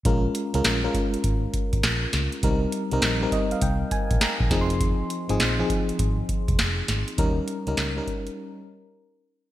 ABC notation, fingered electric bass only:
X:1
M:4/4
L:1/16
Q:"Swing 16ths" 1/4=101
K:Bbdor
V:1 name="Fingered electric bass" clef=bass
B,,,2 z D,, B,,,2 z2 A,,,2 z A,,, B,,,2 D,, z | C,,2 z C,, B,,,2 z2 C,,2 z B,,, z B,,, F,,,2- | F,,,2 z A,,, B,,,2 z2 A,,,2 z F,,, F,,,2 A,,, z | E,,2 z D,, D,,2 z8 z2 |]